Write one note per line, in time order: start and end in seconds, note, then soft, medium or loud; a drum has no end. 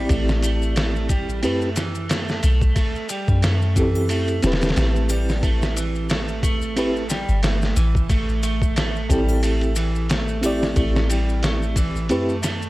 0.00 1.39 C4 medium
0.00 1.40 E4 medium
0.00 1.40 G4 medium
0.00 1.41 D5 medium
0.09 1.46 A1 loud
0.09 0.42 A3 medium
0.09 kick loud
0.09 ride medium
0.09 maracas soft
0.28 snare soft
0.28 maracas soft
0.42 0.75 A3 medium
0.42 ride medium
0.42 maracas medium
0.62 maracas soft
0.76 1.07 A3 medium
0.76 snare loud
0.76 ride medium
0.76 maracas soft
0.96 maracas soft
1.09 1.42 G3 medium
1.09 kick medium
1.09 ride medium
1.09 maracas medium
1.29 maracas soft
1.43 2.41 F#2 loud
1.43 1.75 A3 medium
1.43 1.68 C4 medium
1.43 1.68 E4 medium
1.43 1.68 G4 medium
1.43 1.69 B4 medium
1.43 ride medium
1.43 maracas soft
1.61 maracas soft
1.76 2.07 E3 medium
1.76 snare soft
1.76 ride medium
1.76 maracas medium
1.95 maracas soft
2.09 2.42 A3 medium
2.09 snare loud
2.09 ride medium
2.09 maracas soft
2.29 snare soft
2.29 maracas soft
2.43 2.73 B1 medium
2.43 2.75 A3 medium
2.43 ride medium
2.43 maracas medium
2.61 kick medium
2.61 maracas soft
2.76 3.07 A3 medium
2.76 kick loud
2.76 ride medium
2.76 maracas soft
2.95 maracas soft
3.09 3.42 G3 medium
3.09 ride medium
3.09 maracas medium
3.28 4.40 F#2 medium
3.28 kick medium
3.28 maracas soft
3.42 3.75 A3 medium
3.42 snare loud
3.42 ride medium
3.42 maracas medium
3.62 maracas soft
3.76 4.07 E3 medium
3.76 4.40 C4 medium
3.76 4.40 E4 medium
3.76 4.40 G4 medium
3.76 4.41 A4 medium
3.76 kick medium
3.76 ride medium
3.76 maracas medium
3.95 triangle medium
3.95 maracas soft
4.09 4.42 A3 medium
4.09 ride medium
4.09 maracas medium
4.28 ride soft
4.28 maracas soft
4.42 4.73 E1 medium
4.42 4.75 A3 medium
4.42 6.73 C4 medium
4.42 6.73 E4 medium
4.42 6.74 G4 medium
4.42 snare medium
4.42 ride medium
4.42 maracas medium
4.47 6.75 B4 medium
4.52 snare medium
4.52 ride medium
4.61 snare medium
4.61 ride medium
4.61 maracas soft
4.69 snare medium
4.69 ride medium
4.76 7.25 A1 loud
4.76 5.07 A3 loud
4.76 snare loud
4.76 ride medium
4.76 maracas soft
4.96 maracas soft
5.09 5.42 G3 medium
5.09 ride medium
5.09 triangle medium
5.09 maracas medium
5.29 snare soft
5.29 maracas soft
5.43 5.75 A3 medium
5.43 kick loud
5.43 ride medium
5.43 maracas soft
5.62 snare soft
5.62 maracas soft
5.76 6.07 E3 medium
5.76 ride medium
5.76 maracas medium
5.95 maracas soft
6.09 6.42 A3 medium
6.09 snare loud
6.09 ride medium
6.09 maracas soft
6.28 maracas soft
6.43 6.75 A3 loud
6.43 kick medium
6.43 ride medium
6.43 maracas medium
6.62 maracas soft
6.76 7.07 A3 loud
6.76 7.01 C4 medium
6.76 7.01 E4 medium
6.76 7.02 G4 medium
6.76 7.02 B4 medium
6.76 ride medium
6.76 maracas soft
6.96 maracas soft
7.10 7.42 G3 medium
7.10 snare soft
7.10 ride medium
7.10 maracas medium
7.29 7.74 G1 medium
7.29 maracas soft
7.43 7.75 A3 medium
7.43 snare loud
7.43 ride medium
7.43 maracas soft
7.62 snare soft
7.62 maracas soft
7.76 9.07 A1 medium
7.76 8.07 E3 medium
7.76 ride medium
7.76 maracas medium
7.95 kick medium
7.95 maracas soft
8.10 8.42 A3 medium
8.10 kick loud
8.10 ride medium
8.10 maracas medium
8.29 maracas soft
8.43 8.75 A3 medium
8.43 ride medium
8.43 maracas medium
8.62 kick medium
8.62 maracas soft
8.76 9.07 A3 medium
8.76 snare loud
8.76 ride medium
8.76 maracas soft
8.96 maracas soft
9.10 10.74 A1 loud
9.10 9.42 G3 medium
9.10 9.73 C4 medium
9.10 9.73 E4 medium
9.10 9.74 G4 medium
9.10 9.74 A4 medium
9.10 kick medium
9.10 ride medium
9.10 maracas medium
9.29 triangle medium
9.29 maracas soft
9.43 9.75 A3 medium
9.43 ride medium
9.43 maracas medium
9.61 ride soft
9.61 maracas soft
9.76 10.07 E3 medium
9.76 ride medium
9.76 maracas medium
9.95 maracas soft
10.09 10.42 A3 medium
10.09 snare loud
10.09 ride medium
10.09 maracas medium
10.28 maracas soft
10.41 10.75 A3 medium
10.41 12.05 C4 medium
10.41 12.06 E4 medium
10.41 12.07 G4 medium
10.41 ride medium
10.41 triangle medium
10.41 maracas medium
10.46 12.08 D5 medium
10.62 snare soft
10.62 maracas soft
10.76 12.12 A1 loud
10.76 11.07 A3 medium
10.76 kick loud
10.76 ride medium
10.76 maracas soft
10.96 snare medium
10.96 maracas soft
11.10 11.42 G3 medium
11.10 ride medium
11.10 maracas medium
11.29 maracas soft
11.43 11.75 A3 medium
11.43 snare loud
11.43 ride medium
11.43 maracas soft
11.63 maracas soft
11.76 12.07 E3 medium
11.76 kick medium
11.76 ride medium
11.76 maracas medium
11.96 maracas soft
12.09 12.69 F#2 loud
12.09 12.42 A3 medium
12.09 12.34 C4 medium
12.09 12.34 E4 medium
12.09 12.35 G4 medium
12.09 12.35 B4 medium
12.09 ride medium
12.09 maracas soft
12.29 maracas soft
12.43 12.69 A3 medium
12.43 snare soft
12.43 ride medium
12.43 maracas medium
12.62 maracas soft